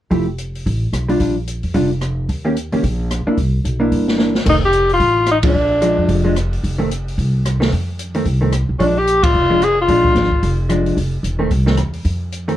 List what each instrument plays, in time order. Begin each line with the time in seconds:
0.11 upright bass F1, hollow-body jazz guitar F3 A3 E4 G4, kick, open hi-hat
0.38 closed hi-hat
0.55 open hi-hat
0.66 upright bass A1, kick, open hi-hat
0.92 upright bass B1, cross-stick, closed hi-hat
1.08 hollow-body jazz guitar G3 D4 F4, open hi-hat
1.19 upright bass A#1, hollow-body jazz guitar G3 D4 F4, kick, open hi-hat
1.47 closed hi-hat
1.63 upright bass F2, open hi-hat
1.74 upright bass F1, hollow-body jazz guitar G3 D4 F4, kick, open hi-hat
2.01 cross-stick, closed hi-hat
2.29 upright bass D#2, kick, open hi-hat
2.45 hollow-body jazz guitar D#3 A#3 C#4 G4
2.57 closed hi-hat
2.72 upright bass C#2, hollow-body jazz guitar D#3 A#3 C#4 G4, open hi-hat
2.83 upright bass A#1, kick, open hi-hat
3.11 cross-stick, closed hi-hat
3.27 hollow-body jazz guitar A#3 D4 E4, muted upright bass stroke
3.38 upright bass C2, kick, open hi-hat
3.64 upright bass B1, closed hi-hat
3.80 hollow-body jazz guitar A#3 D4 E4
3.92 upright bass G1, kick, open hi-hat
4.08 snare
4.17 hollow-body jazz guitar A#3 D4 E4, snare
4.35 snare
4.45 upright bass F1, hollow-body jazz guitar D#3 A3 C4, alto saxophone D#4, kick, crash
4.65 alto saxophone G4
4.73 closed hi-hat
4.89 open hi-hat
4.93 alto saxophone F4
5.00 upright bass A1, kick, open hi-hat
5.26 cross-stick, closed hi-hat
5.31 alto saxophone D#4
5.43 hollow-body jazz guitar F3 G#3 D4, kick, ride
5.48 alto saxophone D4
5.55 upright bass A#1
5.82 hollow-body jazz guitar F3 G#3 D4, closed hi-hat
5.98 upright bass F2
6.09 upright bass F1, kick, open hi-hat
6.24 hollow-body jazz guitar F3 G#3 D4
6.36 cross-stick, closed hi-hat
6.53 open hi-hat
6.63 upright bass F1, kick, open hi-hat
6.78 hollow-body jazz guitar D#3 A3 C4
6.91 closed hi-hat
7.08 open hi-hat
7.18 upright bass C2, kick, open hi-hat
7.46 cross-stick, closed hi-hat
7.60 hollow-body jazz guitar D#3 A3 C4, snare, open hi-hat
7.72 upright bass F2, kick, open hi-hat
7.99 closed hi-hat
8.15 hollow-body jazz guitar D#3 A3 C4, open hi-hat
8.25 upright bass C2, kick, open hi-hat
8.41 hollow-body jazz guitar D#3 A3 C4
8.52 cross-stick, closed hi-hat
8.69 upright bass B1
8.79 upright bass A#1, hollow-body jazz guitar F3 G#3 D4, alto saxophone C#4 D4, kick, open hi-hat
8.98 alto saxophone G4
9.07 closed hi-hat
9.23 alto saxophone F4, kick, ride
9.34 upright bass F1
9.50 hollow-body jazz guitar F3 G#3 D4
9.62 alto saxophone G#4, cross-stick, closed hi-hat
9.81 alto saxophone F4
9.88 upright bass A#1, hollow-body jazz guitar F3 G#3 D4, kick, open hi-hat
10.05 kick
10.15 upright bass G#1, snare, closed hi-hat
10.32 kick
10.43 upright bass F1, kick, open hi-hat
10.69 hollow-body jazz guitar F3 G#3 D4, cross-stick, closed hi-hat
10.86 open hi-hat
10.97 upright bass F1, kick, open hi-hat
11.23 upright bass E1, closed hi-hat
11.39 hollow-body jazz guitar D#3 A3 C4
11.51 upright bass C2, kick, open hi-hat
11.66 hollow-body jazz guitar D#3 A3 C4, snare
11.77 upright bass E2, cross-stick, closed hi-hat
11.93 open hi-hat
12.05 upright bass F2, kick, open hi-hat
12.32 closed hi-hat
12.48 hollow-body jazz guitar D#3 A3 C4, open hi-hat